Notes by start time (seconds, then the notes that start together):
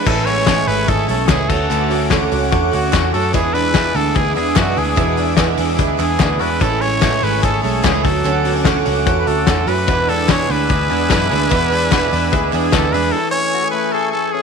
Already playing: B3 D4 G#4
0.05 A1 A2 E3 G#3 A3 C#4 E4 A4 G#5 C#6, kick, crash
0.25 G#3 B3 C#4 E4 C#5, open hi-hat
0.38 C#4
0.46 A2 E3 G#3 C#4 E4 G#4, kick, snare, clap, closed hi-hat
0.67 G#1 G#3 A3 C#4 E4 B4, open hi-hat
0.88 G#1 E3 G#3 C#4 E4 G#4 A4, kick, closed hi-hat
1.08 B1 G#3 A3 C#4 E4 A4, open hi-hat
1.28 C#2 A2 E3 G#3 B3 C#4 E4 G#4, kick, snare, clap, closed hi-hat
1.39 C#4
1.49 D2 A3 C#4 F#4 A4 F#5 D6, kick, crash
1.53 A3
1.70 D2 D3 A3 C#4 F#4, closed hi-hat
1.90 A3 C#4 F#4, open hi-hat
2.10 D3 A3 C#4 F#4, kick, snare, clap, closed hi-hat
2.31 C#2 A3 C#4 F#4, open hi-hat
2.51 E2 D3 A3 C#4 F#4, kick, closed hi-hat
2.72 D2 A3 C#4 F#4, open hi-hat
2.93 E2 D3 A3 C#4 F#4, kick, snare, clap, closed hi-hat
3.13 F#2 A3 C#4 F#4 A4, open hi-hat
3.33 E2 B2 E3 G#3 D4 E4 G#4 E5 D6, kick, closed hi-hat
3.54 E3 G#3 D4 E4 B4, open hi-hat
3.74 E2 B2 E3 G#3 D4 E4 G#4, kick, snare, clap, closed hi-hat
3.94 D2 E3 G#3 B3 D4 E4 A4, open hi-hat
4.14 D2 E3 G#3 D4 E4 G#4, kick, closed hi-hat
4.34 E2 E3 G#3 B3 D4 E4 G#4, open hi-hat
4.55 E2 F#2 B2 E3 G#3 D4 E4 F#4, kick, snare, clap, closed hi-hat
4.76 D2 E3 G#3 D4 E4 G#4, open hi-hat
4.96 E2 B2 E3 G#3 D4 E4, kick, closed hi-hat
5.16 E3 G#3 D4 E4, open hi-hat
5.37 E2 B2 E3 G#3 D4 E4 G#4, kick, snare, clap, closed hi-hat
5.57 E2 E3 G#3 B3 D4 E4, open hi-hat
5.77 D2 E3 G#3 D4 E4 G#4, kick, closed hi-hat
5.97 E2 E3 G#3 B3 D4 E4, clap, open hi-hat
6.02 G#4
6.19 D2 E2 B2 E3 G#3 D4 E4, kick, snare, clap, closed hi-hat
6.39 E2 E3 G#3 D4 E4 F#4 B4, open hi-hat
6.50 G#4
6.60 A1 A2 E3 G#3 A3 C#4 E4 A4 G#5 C#6, kick, closed hi-hat
6.81 G#3 C#4 E4 C#5, open hi-hat
7.00 A2 E3 G#3 C#4 E4 F#4, kick, snare, clap, closed hi-hat
7.13 G#4
7.21 G#1 G#3 A3 C#4 E4 B4, open hi-hat
7.41 G#1 E3 G#3 C#4 E4 G#4 A4, kick, closed hi-hat
7.61 B1 G#3 A3 C#4 E4 A4, open hi-hat
7.83 C#2 A2 E3 G#3 B3 C#4 E4 G#4, kick, snare, clap, closed hi-hat
7.95 C#4
8.04 D2 F#3 A3 C#4 F#4 A4 F#5 D6, kick, open hi-hat
8.24 D2 D3 F#3 A3 C#4 F#4, closed hi-hat
8.45 A3 B3 C#4 F#4, open hi-hat
8.56 C#4
8.65 D3 A3 C#4 F#4, kick, snare, clap, closed hi-hat
8.85 C#2 A3 C#4 F#4, open hi-hat
9.06 E2 D3 A3 C#4 F#4, kick, closed hi-hat
9.19 B4
9.26 D2 A3 C#4 F#4 A4, open hi-hat
9.47 E2 D3 A3 C#4 F#4, kick, snare, clap, closed hi-hat
9.67 F#2 A3 C#4 E4 F#4 B4, open hi-hat
9.78 F#4
9.87 E2 B2 E3 G#3 B3 D4 E4 D5 G#5 E6, kick, closed hi-hat
10.07 E3 G#3 D4 E4 A4, open hi-hat
10.28 E2 B2 E3 G#3 D4 E4 G#4 C#5, kick, snare, clap, closed hi-hat
10.48 D2 E3 G#3 B3 D4 E4 B4, open hi-hat
10.69 D2 E3 G#3 D4 E4 G#4, kick, closed hi-hat
10.89 E2 E3 G#3 B3 D4 E4, open hi-hat
11.10 E2 F#2 B2 E3 G#3 D4 E4, kick, snare, clap, closed hi-hat
11.30 D2 E3 G#3 D4 E4 G#4, open hi-hat
11.49 E2 B2 E3 G#3 B3 D4 E4, kick, closed hi-hat
11.70 E3 G#3 D4 E4, open hi-hat
11.91 E2 B2 E3 G#3 D4 E4 F#4, kick, snare, clap, closed hi-hat
12.02 G#4
12.10 E2 E3 G#3 B3 D4 E4, open hi-hat
12.31 D2 E3 G#3 D4 E4 G#4, kick, closed hi-hat
12.52 E2 E3 G#3 B3 D4 E4 G#4, clap, open hi-hat
12.71 D2 E2 B2 E3 G#3 D4 E4 A4, kick, snare, clap, closed hi-hat
12.92 E2 E3 G#3 D4 E4 G#4 B4, open hi-hat
13.12 E3 A3 A4 G#5 C#6
13.31 C#4 C#5
13.54 F#4
13.64 G#4
13.71 A3 B4
13.92 G#4 A4
14.12 A3 A4
14.32 C#4 G#4